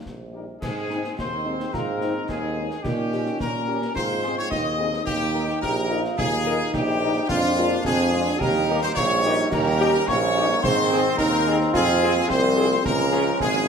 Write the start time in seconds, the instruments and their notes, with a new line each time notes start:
0.06 tuba A#1, concert bass drum, snare
0.34 french horn section G3 D#4 G4, trumpet section A#4
0.61 tuba G#2, trombone section G#3 C4, trumpet section G#4, flute section G#5, concert bass drum, snare, crash
0.89 french horn section G#3 C4 D#4, snare
1.04 snare
1.18 tuba D#2, euphonium D#4, trumpet section C5, flute section C6, concert bass drum, snare
1.45 french horn section G#3 C4 D#4, euphonium C4
1.60 snare
1.73 tuba G#2, euphonium F4, trumpet section A#4, flute section A#5, concert bass drum, snare
2.01 french horn section G#3 C4 D#4, euphonium D#4, snare
2.29 tuba D#2, trumpet section G#4, flute section G#5, concert bass drum, snare
2.57 french horn section G#3 C4 D#4
2.71 snare
2.83 tuba A#2, trombone section A#3 C#4, euphonium D#4, trumpet section G4, flute section G5, concert bass drum, snare, crash
3.12 french horn section C#4 G4, snare
3.26 snare
3.39 tuba A#2, euphonium C#4, trumpet section A#4, flute section A#5, concert bass drum, snare
3.67 euphonium C#4, french horn section C#4 G4
3.82 snare
3.95 tuba G#2, trombone section G#3 C4, euphonium F4, trumpet section C5, flute section C6, concert bass drum, snare
4.22 french horn section C4 D#4 G#4, snare
4.38 trumpet section C#5, flute section C#6
4.51 tuba D#2, euphonium D#4, trumpet section D#5, flute section D#6, concert bass drum, snare
4.78 french horn section C4 D#4 G#4
4.94 snare
5.05 tuba D#2, trombone section A#3 D#4, trumpet section G4, flute section G5, concert bass drum, snare, crash
5.33 french horn section A#3 D#4 A#4, snare
5.49 snare
5.62 tuba A#1, euphonium G4, trumpet section A#4, flute section A#5, concert bass drum, snare
5.89 french horn section A#3 D#4 A#4, euphonium F4
6.05 snare
6.18 tuba D#2, trumpet section G#4, flute section G#5, concert bass drum, snare
6.46 french horn section A#3 D#4 A#4, snare
6.72 tuba A#1, euphonium D#4, trumpet section G4, flute section G5, concert bass drum, snare
7.01 french horn section A#3 D#4 A#4
7.15 snare
7.28 tuba F2, trombone section G#3 D4, euphonium D4, trumpet section F4, flute section F5, concert bass drum, snare, crash
7.56 french horn section G#3 D4 F4, euphonium A#3, snare
7.71 snare
7.84 tuba F2, euphonium C4, trumpet section G#4, flute section G#5, concert bass drum, snare
8.13 french horn section G#3 D4 F4, euphonium D4
8.26 snare
8.39 tuba D#2, trombone section G3 D#4, euphonium G4, trumpet section A#4, flute section A#5, concert bass drum, snare
8.69 french horn section A#3 D#4 G4
8.83 trumpet section C5, flute section C6
8.95 tuba A#1, euphonium F4, trumpet section C#5, flute section C#6, concert bass drum, snare
9.23 french horn section A#3 D#4 G4, euphonium D#4
9.51 tuba D#2, trombone section C#4, euphonium G4, trumpet section A#4, flute section A#5, concert bass drum, snare, crash
9.80 french horn section C#4 D#4 G4, snare
9.94 snare
10.07 tuba A#1, euphonium A#3, trumpet section C#5, flute section C#6, concert bass drum, snare
10.37 french horn section C#4 D#4 G4
10.49 snare
10.61 tuba G#2, trombone section D#3 C4, euphonium C4, trumpet section C5, flute section C6, concert bass drum, snare
10.91 french horn section C4 D#4 G#4, snare
11.17 tuba D#2, euphonium D#4, trumpet section A#4, flute section A#5, concert bass drum, snare
11.46 french horn section C4 D#4 G#4
11.60 snare
11.73 tuba F2, trombone section F3, euphonium F4, trumpet section G#4, flute section G#5, concert bass drum, snare, crash
12.02 french horn section C4 F4 G#4, snare
12.16 snare
12.29 tuba C2, euphonium C4, trumpet section C5, flute section C6, concert bass drum, snare
12.56 french horn section C4 F4 G#4
12.71 snare
12.85 tuba C#2, trombone section G#3, euphonium C#4, trumpet section A#4, flute section A#5, concert bass drum, snare
13.12 french horn section C#4 F4 G#4, snare
13.40 tuba G#1, trumpet section G#4, flute section G#5, concert bass drum, snare